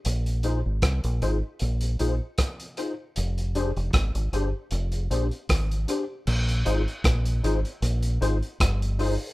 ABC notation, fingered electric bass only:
X:1
M:4/4
L:1/16
Q:"Swing 16ths" 1/4=77
K:Bbmix
V:1 name="Fingered electric bass" clef=bass
B,,,3 A,,, C,, B,,, A,,, z B,,,2 B,,, z4 z | F,,,3 F,,, A,,, A,,, G,,, z F,,,2 B,,, z A,,,2 z2 | B,,,2 A,,, z B,,,2 A,,, z B,,,2 A,,, z G,,,3 z |]